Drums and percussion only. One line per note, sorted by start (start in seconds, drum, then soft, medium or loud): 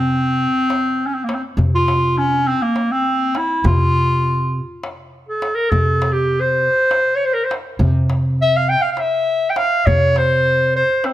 0.11 darbuka ka soft
0.55 darbuka ka soft
0.70 darbuka tek medium
1.29 darbuka tek medium
1.58 darbuka dum medium
1.88 darbuka tek medium
2.17 darbuka ka soft
2.62 darbuka ka soft
2.76 darbuka tek medium
3.35 darbuka tek medium
3.65 darbuka dum loud
3.81 darbuka ka soft
4.25 darbuka ka soft
4.83 darbuka tek medium
5.42 darbuka tek medium
5.72 darbuka dum medium
6.02 darbuka tek medium
6.32 darbuka ka soft
6.76 darbuka ka soft
6.91 darbuka tek medium
7.51 darbuka tek medium
7.80 darbuka dum medium
8.10 darbuka tek medium
8.39 darbuka ka soft
8.82 darbuka ka soft
8.97 darbuka tek medium
9.56 darbuka tek medium
9.87 darbuka dum medium
10.16 darbuka tek medium
10.45 darbuka ka soft
10.90 darbuka ka soft
11.04 darbuka tek medium